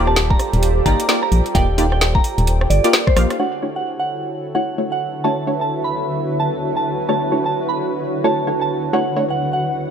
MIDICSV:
0, 0, Header, 1, 7, 480
1, 0, Start_track
1, 0, Key_signature, 2, "major"
1, 0, Tempo, 461538
1, 1612, Time_signature, 4, 2, 24, 8
1, 10301, End_track
2, 0, Start_track
2, 0, Title_t, "Synth bell"
2, 0, Program_c, 0, 98
2, 76, Note_on_c, 0, 81, 85
2, 196, Note_off_c, 0, 81, 0
2, 315, Note_on_c, 0, 82, 95
2, 520, Note_off_c, 0, 82, 0
2, 892, Note_on_c, 0, 82, 92
2, 1108, Note_off_c, 0, 82, 0
2, 1272, Note_on_c, 0, 82, 95
2, 1478, Note_off_c, 0, 82, 0
2, 1608, Note_on_c, 0, 79, 95
2, 1826, Note_off_c, 0, 79, 0
2, 1995, Note_on_c, 0, 79, 84
2, 2115, Note_off_c, 0, 79, 0
2, 2234, Note_on_c, 0, 82, 89
2, 2440, Note_off_c, 0, 82, 0
2, 2807, Note_on_c, 0, 74, 92
2, 3026, Note_off_c, 0, 74, 0
2, 3192, Note_on_c, 0, 72, 97
2, 3398, Note_off_c, 0, 72, 0
2, 3531, Note_on_c, 0, 78, 87
2, 3748, Note_off_c, 0, 78, 0
2, 3912, Note_on_c, 0, 78, 76
2, 4034, Note_off_c, 0, 78, 0
2, 4155, Note_on_c, 0, 78, 81
2, 4360, Note_off_c, 0, 78, 0
2, 4730, Note_on_c, 0, 78, 86
2, 4947, Note_off_c, 0, 78, 0
2, 5116, Note_on_c, 0, 78, 86
2, 5320, Note_off_c, 0, 78, 0
2, 5449, Note_on_c, 0, 81, 88
2, 5667, Note_off_c, 0, 81, 0
2, 5836, Note_on_c, 0, 81, 81
2, 5956, Note_off_c, 0, 81, 0
2, 6077, Note_on_c, 0, 83, 84
2, 6281, Note_off_c, 0, 83, 0
2, 6652, Note_on_c, 0, 81, 85
2, 6868, Note_off_c, 0, 81, 0
2, 7035, Note_on_c, 0, 81, 88
2, 7240, Note_off_c, 0, 81, 0
2, 7369, Note_on_c, 0, 81, 93
2, 7587, Note_off_c, 0, 81, 0
2, 7754, Note_on_c, 0, 81, 81
2, 7875, Note_off_c, 0, 81, 0
2, 7994, Note_on_c, 0, 83, 85
2, 8199, Note_off_c, 0, 83, 0
2, 8573, Note_on_c, 0, 81, 90
2, 8789, Note_off_c, 0, 81, 0
2, 8958, Note_on_c, 0, 81, 88
2, 9161, Note_off_c, 0, 81, 0
2, 9291, Note_on_c, 0, 78, 91
2, 9508, Note_off_c, 0, 78, 0
2, 9676, Note_on_c, 0, 78, 82
2, 9796, Note_off_c, 0, 78, 0
2, 9913, Note_on_c, 0, 78, 85
2, 10119, Note_off_c, 0, 78, 0
2, 10301, End_track
3, 0, Start_track
3, 0, Title_t, "Ambient pad"
3, 0, Program_c, 1, 92
3, 0, Note_on_c, 1, 67, 94
3, 0, Note_on_c, 1, 72, 73
3, 0, Note_on_c, 1, 79, 73
3, 3531, Note_off_c, 1, 79, 0
3, 3533, Note_off_c, 1, 67, 0
3, 3533, Note_off_c, 1, 72, 0
3, 3535, Note_on_c, 1, 50, 89
3, 3840, Note_on_c, 1, 66, 63
3, 4230, Note_on_c, 1, 76, 75
3, 4313, Note_on_c, 1, 71, 82
3, 8271, Note_on_c, 1, 78, 75
3, 8412, Note_off_c, 1, 76, 0
3, 10301, Note_off_c, 1, 50, 0
3, 10301, Note_off_c, 1, 66, 0
3, 10301, Note_off_c, 1, 71, 0
3, 10301, Note_off_c, 1, 78, 0
3, 10301, End_track
4, 0, Start_track
4, 0, Title_t, "Analog synth pad"
4, 0, Program_c, 2, 89
4, 0, Note_on_c, 2, 65, 76
4, 0, Note_on_c, 2, 67, 70
4, 0, Note_on_c, 2, 69, 73
4, 0, Note_on_c, 2, 74, 89
4, 3490, Note_off_c, 2, 74, 0
4, 3491, Note_off_c, 2, 65, 0
4, 3491, Note_off_c, 2, 67, 0
4, 3493, Note_off_c, 2, 69, 0
4, 3533, Note_on_c, 2, 73, 84
4, 3534, Note_on_c, 2, 50, 78
4, 3534, Note_on_c, 2, 64, 70
4, 3534, Note_on_c, 2, 66, 69
4, 3534, Note_on_c, 2, 69, 70
4, 7334, Note_off_c, 2, 69, 0
4, 7373, Note_on_c, 2, 71, 71
4, 10301, Note_off_c, 2, 50, 0
4, 10301, Note_off_c, 2, 64, 0
4, 10301, Note_off_c, 2, 66, 0
4, 10301, Note_off_c, 2, 71, 0
4, 10301, Note_off_c, 2, 73, 0
4, 10301, End_track
5, 0, Start_track
5, 0, Title_t, "Synth stab"
5, 0, Program_c, 3, 62
5, 0, Note_on_c, 3, 58, 77
5, 0, Note_on_c, 3, 63, 68
5, 0, Note_on_c, 3, 65, 68
5, 0, Note_on_c, 3, 67, 69
5, 0, Note_on_c, 3, 74, 85
5, 868, Note_off_c, 3, 58, 0
5, 868, Note_off_c, 3, 63, 0
5, 868, Note_off_c, 3, 65, 0
5, 868, Note_off_c, 3, 67, 0
5, 868, Note_off_c, 3, 74, 0
5, 891, Note_on_c, 3, 58, 90
5, 891, Note_on_c, 3, 63, 84
5, 891, Note_on_c, 3, 65, 80
5, 891, Note_on_c, 3, 67, 79
5, 891, Note_on_c, 3, 74, 101
5, 1108, Note_off_c, 3, 58, 0
5, 1108, Note_off_c, 3, 63, 0
5, 1108, Note_off_c, 3, 65, 0
5, 1108, Note_off_c, 3, 67, 0
5, 1108, Note_off_c, 3, 74, 0
5, 1129, Note_on_c, 3, 58, 80
5, 1129, Note_on_c, 3, 63, 73
5, 1129, Note_on_c, 3, 65, 73
5, 1129, Note_on_c, 3, 67, 73
5, 1129, Note_on_c, 3, 74, 90
5, 1263, Note_off_c, 3, 58, 0
5, 1263, Note_off_c, 3, 63, 0
5, 1263, Note_off_c, 3, 65, 0
5, 1263, Note_off_c, 3, 67, 0
5, 1263, Note_off_c, 3, 74, 0
5, 1609, Note_on_c, 3, 58, 97
5, 1609, Note_on_c, 3, 63, 85
5, 1609, Note_on_c, 3, 65, 86
5, 1609, Note_on_c, 3, 67, 86
5, 1609, Note_on_c, 3, 74, 105
5, 1743, Note_off_c, 3, 58, 0
5, 1743, Note_off_c, 3, 63, 0
5, 1743, Note_off_c, 3, 65, 0
5, 1743, Note_off_c, 3, 67, 0
5, 1743, Note_off_c, 3, 74, 0
5, 1850, Note_on_c, 3, 58, 77
5, 1850, Note_on_c, 3, 63, 67
5, 1850, Note_on_c, 3, 65, 70
5, 1850, Note_on_c, 3, 67, 72
5, 1851, Note_on_c, 3, 74, 83
5, 1934, Note_off_c, 3, 58, 0
5, 1934, Note_off_c, 3, 63, 0
5, 1934, Note_off_c, 3, 65, 0
5, 1934, Note_off_c, 3, 67, 0
5, 1934, Note_off_c, 3, 74, 0
5, 2955, Note_on_c, 3, 63, 77
5, 2955, Note_on_c, 3, 65, 74
5, 2955, Note_on_c, 3, 67, 77
5, 2955, Note_on_c, 3, 74, 89
5, 2956, Note_on_c, 3, 58, 85
5, 3268, Note_off_c, 3, 63, 0
5, 3268, Note_off_c, 3, 65, 0
5, 3268, Note_off_c, 3, 67, 0
5, 3268, Note_off_c, 3, 74, 0
5, 3269, Note_off_c, 3, 58, 0
5, 3290, Note_on_c, 3, 58, 78
5, 3290, Note_on_c, 3, 63, 75
5, 3290, Note_on_c, 3, 65, 75
5, 3290, Note_on_c, 3, 67, 74
5, 3290, Note_on_c, 3, 77, 91
5, 3508, Note_off_c, 3, 58, 0
5, 3508, Note_off_c, 3, 63, 0
5, 3508, Note_off_c, 3, 65, 0
5, 3508, Note_off_c, 3, 67, 0
5, 3508, Note_off_c, 3, 77, 0
5, 3531, Note_on_c, 3, 62, 68
5, 3531, Note_on_c, 3, 64, 68
5, 3531, Note_on_c, 3, 73, 82
5, 3532, Note_on_c, 3, 57, 71
5, 3532, Note_on_c, 3, 66, 68
5, 3748, Note_off_c, 3, 62, 0
5, 3748, Note_off_c, 3, 64, 0
5, 3748, Note_off_c, 3, 73, 0
5, 3749, Note_off_c, 3, 57, 0
5, 3749, Note_off_c, 3, 66, 0
5, 3769, Note_on_c, 3, 64, 66
5, 3770, Note_on_c, 3, 57, 74
5, 3770, Note_on_c, 3, 62, 66
5, 3770, Note_on_c, 3, 66, 64
5, 3770, Note_on_c, 3, 73, 78
5, 4707, Note_off_c, 3, 64, 0
5, 4708, Note_off_c, 3, 57, 0
5, 4708, Note_off_c, 3, 62, 0
5, 4708, Note_off_c, 3, 66, 0
5, 4708, Note_off_c, 3, 73, 0
5, 4731, Note_on_c, 3, 57, 84
5, 4731, Note_on_c, 3, 62, 80
5, 4731, Note_on_c, 3, 64, 78
5, 4731, Note_on_c, 3, 66, 77
5, 4731, Note_on_c, 3, 73, 96
5, 4948, Note_off_c, 3, 57, 0
5, 4948, Note_off_c, 3, 62, 0
5, 4948, Note_off_c, 3, 66, 0
5, 4948, Note_off_c, 3, 73, 0
5, 4949, Note_off_c, 3, 64, 0
5, 4972, Note_on_c, 3, 73, 85
5, 4973, Note_on_c, 3, 57, 74
5, 4973, Note_on_c, 3, 62, 70
5, 4973, Note_on_c, 3, 64, 68
5, 4973, Note_on_c, 3, 66, 66
5, 5105, Note_off_c, 3, 57, 0
5, 5105, Note_off_c, 3, 62, 0
5, 5105, Note_off_c, 3, 64, 0
5, 5105, Note_off_c, 3, 66, 0
5, 5105, Note_off_c, 3, 73, 0
5, 5452, Note_on_c, 3, 57, 88
5, 5453, Note_on_c, 3, 62, 82
5, 5453, Note_on_c, 3, 64, 79
5, 5453, Note_on_c, 3, 66, 86
5, 5453, Note_on_c, 3, 73, 99
5, 5585, Note_off_c, 3, 57, 0
5, 5585, Note_off_c, 3, 62, 0
5, 5585, Note_off_c, 3, 64, 0
5, 5585, Note_off_c, 3, 66, 0
5, 5585, Note_off_c, 3, 73, 0
5, 5690, Note_on_c, 3, 57, 72
5, 5691, Note_on_c, 3, 62, 64
5, 5691, Note_on_c, 3, 64, 66
5, 5691, Note_on_c, 3, 66, 67
5, 5691, Note_on_c, 3, 73, 78
5, 5774, Note_off_c, 3, 57, 0
5, 5774, Note_off_c, 3, 62, 0
5, 5774, Note_off_c, 3, 64, 0
5, 5774, Note_off_c, 3, 66, 0
5, 5774, Note_off_c, 3, 73, 0
5, 7371, Note_on_c, 3, 57, 77
5, 7372, Note_on_c, 3, 62, 67
5, 7372, Note_on_c, 3, 64, 67
5, 7372, Note_on_c, 3, 66, 70
5, 7372, Note_on_c, 3, 73, 87
5, 7589, Note_off_c, 3, 57, 0
5, 7589, Note_off_c, 3, 62, 0
5, 7589, Note_off_c, 3, 64, 0
5, 7589, Note_off_c, 3, 66, 0
5, 7589, Note_off_c, 3, 73, 0
5, 7611, Note_on_c, 3, 62, 66
5, 7611, Note_on_c, 3, 64, 66
5, 7611, Note_on_c, 3, 66, 64
5, 7611, Note_on_c, 3, 73, 77
5, 7612, Note_on_c, 3, 57, 70
5, 8548, Note_off_c, 3, 62, 0
5, 8548, Note_off_c, 3, 64, 0
5, 8548, Note_off_c, 3, 66, 0
5, 8548, Note_off_c, 3, 73, 0
5, 8549, Note_off_c, 3, 57, 0
5, 8572, Note_on_c, 3, 57, 87
5, 8572, Note_on_c, 3, 62, 78
5, 8572, Note_on_c, 3, 64, 75
5, 8572, Note_on_c, 3, 66, 78
5, 8572, Note_on_c, 3, 73, 98
5, 8789, Note_off_c, 3, 57, 0
5, 8789, Note_off_c, 3, 62, 0
5, 8789, Note_off_c, 3, 64, 0
5, 8789, Note_off_c, 3, 66, 0
5, 8789, Note_off_c, 3, 73, 0
5, 8810, Note_on_c, 3, 57, 77
5, 8811, Note_on_c, 3, 62, 67
5, 8811, Note_on_c, 3, 64, 69
5, 8811, Note_on_c, 3, 66, 67
5, 8811, Note_on_c, 3, 73, 81
5, 8944, Note_off_c, 3, 57, 0
5, 8944, Note_off_c, 3, 62, 0
5, 8944, Note_off_c, 3, 64, 0
5, 8944, Note_off_c, 3, 66, 0
5, 8944, Note_off_c, 3, 73, 0
5, 9289, Note_on_c, 3, 57, 92
5, 9289, Note_on_c, 3, 66, 83
5, 9290, Note_on_c, 3, 62, 84
5, 9290, Note_on_c, 3, 64, 83
5, 9290, Note_on_c, 3, 73, 98
5, 9423, Note_off_c, 3, 57, 0
5, 9423, Note_off_c, 3, 66, 0
5, 9424, Note_off_c, 3, 62, 0
5, 9424, Note_off_c, 3, 64, 0
5, 9424, Note_off_c, 3, 73, 0
5, 9530, Note_on_c, 3, 64, 66
5, 9531, Note_on_c, 3, 57, 74
5, 9531, Note_on_c, 3, 62, 68
5, 9531, Note_on_c, 3, 66, 68
5, 9531, Note_on_c, 3, 73, 82
5, 9614, Note_off_c, 3, 57, 0
5, 9614, Note_off_c, 3, 62, 0
5, 9614, Note_off_c, 3, 64, 0
5, 9614, Note_off_c, 3, 66, 0
5, 9614, Note_off_c, 3, 73, 0
5, 10301, End_track
6, 0, Start_track
6, 0, Title_t, "FM bass"
6, 0, Program_c, 4, 39
6, 0, Note_on_c, 4, 27, 91
6, 366, Note_off_c, 4, 27, 0
6, 557, Note_on_c, 4, 27, 95
6, 846, Note_off_c, 4, 27, 0
6, 892, Note_on_c, 4, 31, 90
6, 993, Note_off_c, 4, 31, 0
6, 1371, Note_on_c, 4, 34, 80
6, 1472, Note_off_c, 4, 34, 0
6, 1612, Note_on_c, 4, 27, 99
6, 2286, Note_off_c, 4, 27, 0
6, 2477, Note_on_c, 4, 27, 97
6, 2766, Note_off_c, 4, 27, 0
6, 2811, Note_on_c, 4, 31, 88
6, 2912, Note_off_c, 4, 31, 0
6, 3294, Note_on_c, 4, 34, 81
6, 3394, Note_off_c, 4, 34, 0
6, 10301, End_track
7, 0, Start_track
7, 0, Title_t, "Drums"
7, 76, Note_on_c, 9, 37, 53
7, 170, Note_on_c, 9, 38, 114
7, 170, Note_on_c, 9, 42, 67
7, 180, Note_off_c, 9, 37, 0
7, 274, Note_off_c, 9, 38, 0
7, 274, Note_off_c, 9, 42, 0
7, 317, Note_on_c, 9, 36, 97
7, 410, Note_on_c, 9, 37, 50
7, 410, Note_on_c, 9, 46, 98
7, 421, Note_off_c, 9, 36, 0
7, 514, Note_off_c, 9, 37, 0
7, 514, Note_off_c, 9, 46, 0
7, 556, Note_on_c, 9, 42, 37
7, 652, Note_off_c, 9, 42, 0
7, 652, Note_on_c, 9, 42, 69
7, 756, Note_off_c, 9, 42, 0
7, 892, Note_on_c, 9, 36, 55
7, 892, Note_on_c, 9, 46, 106
7, 996, Note_off_c, 9, 36, 0
7, 996, Note_off_c, 9, 46, 0
7, 1037, Note_on_c, 9, 42, 70
7, 1132, Note_off_c, 9, 42, 0
7, 1132, Note_on_c, 9, 38, 109
7, 1132, Note_on_c, 9, 42, 68
7, 1236, Note_off_c, 9, 38, 0
7, 1236, Note_off_c, 9, 42, 0
7, 1276, Note_on_c, 9, 37, 54
7, 1371, Note_on_c, 9, 46, 97
7, 1380, Note_off_c, 9, 37, 0
7, 1475, Note_off_c, 9, 46, 0
7, 1516, Note_on_c, 9, 42, 34
7, 1612, Note_off_c, 9, 42, 0
7, 1612, Note_on_c, 9, 36, 107
7, 1612, Note_on_c, 9, 42, 68
7, 1716, Note_off_c, 9, 36, 0
7, 1716, Note_off_c, 9, 42, 0
7, 1852, Note_on_c, 9, 46, 105
7, 1956, Note_off_c, 9, 46, 0
7, 1997, Note_on_c, 9, 37, 54
7, 2094, Note_on_c, 9, 38, 113
7, 2094, Note_on_c, 9, 42, 69
7, 2101, Note_off_c, 9, 37, 0
7, 2198, Note_off_c, 9, 38, 0
7, 2198, Note_off_c, 9, 42, 0
7, 2237, Note_on_c, 9, 36, 96
7, 2331, Note_on_c, 9, 46, 102
7, 2341, Note_off_c, 9, 36, 0
7, 2435, Note_off_c, 9, 46, 0
7, 2477, Note_on_c, 9, 42, 38
7, 2572, Note_off_c, 9, 42, 0
7, 2572, Note_on_c, 9, 42, 69
7, 2676, Note_off_c, 9, 42, 0
7, 2717, Note_on_c, 9, 37, 67
7, 2813, Note_on_c, 9, 46, 107
7, 2821, Note_off_c, 9, 37, 0
7, 2917, Note_off_c, 9, 46, 0
7, 2958, Note_on_c, 9, 42, 66
7, 3051, Note_off_c, 9, 42, 0
7, 3051, Note_on_c, 9, 37, 59
7, 3051, Note_on_c, 9, 38, 109
7, 3051, Note_on_c, 9, 42, 64
7, 3155, Note_off_c, 9, 37, 0
7, 3155, Note_off_c, 9, 38, 0
7, 3155, Note_off_c, 9, 42, 0
7, 3196, Note_on_c, 9, 36, 100
7, 3196, Note_on_c, 9, 37, 62
7, 3292, Note_off_c, 9, 37, 0
7, 3292, Note_on_c, 9, 37, 85
7, 3292, Note_on_c, 9, 46, 93
7, 3300, Note_off_c, 9, 36, 0
7, 3396, Note_off_c, 9, 37, 0
7, 3396, Note_off_c, 9, 46, 0
7, 3436, Note_on_c, 9, 37, 75
7, 3436, Note_on_c, 9, 42, 36
7, 3540, Note_off_c, 9, 37, 0
7, 3540, Note_off_c, 9, 42, 0
7, 10301, End_track
0, 0, End_of_file